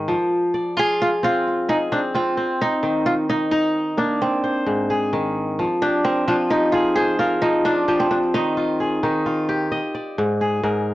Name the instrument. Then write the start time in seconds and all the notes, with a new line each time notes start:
kora
Already playing: G#2 D#3 A#3 G#4 C5
0.08 F3
0.54 D5
0.77 F4 G#4
1.02 F4
1.23 C4 F4
1.69 D#4 G#4
1.92 C4 D4
2.14 C4 F4
2.37 C4
2.62 D#4
2.83 D#3
3.06 F4
3.30 D#4
3.52 D#4
3.97 A#3 D4
4.22 C4
4.44 C5
4.66 G#2
4.90 G#4
5.13 D#3
5.59 F3
5.82 D4 G4
6.05 C4 A#4
6.28 F3 D4 F4
6.50 D#4 G4
6.72 F4 G#4
6.96 G#4 C5
7.19 F4 A#4
7.42 F3 D#4
7.65 D4 F4
7.88 F3 G4
8.00 C4
8.11 D4
8.34 D#3 D#4
8.57 F4
8.80 G#4
9.03 D#3 D#4
9.26 F4
9.49 G4
9.72 D#5
9.95 D5
10.18 G#2
10.41 G#4
10.63 G#2 A#4